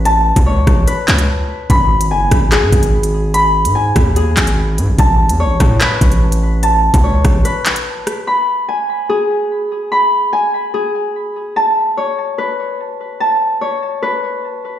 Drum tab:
HH |x--x--x-x-xx----|x--x--x-x-xx-x--|x--x--x-x-xx--x-|x--x--x-x-xx-x--|
CP |----------x-----|--------x-------|----------x-----|--------x-------|
SD |------r---------|------r---------|------r---------|------r---------|
BD |---o--o---------|o-----o---o-----|------o---------|o-----o---o-----|

HH |x--x--x-x-xx--x-|----------------|----------------|----------------|
CP |----------x-----|----------------|----------------|----------------|
SD |------r-------r-|----------------|----------------|----------------|
BD |---o--o---------|----------------|----------------|----------------|

HH |----------------|
CP |----------------|
SD |----------------|
BD |----------------|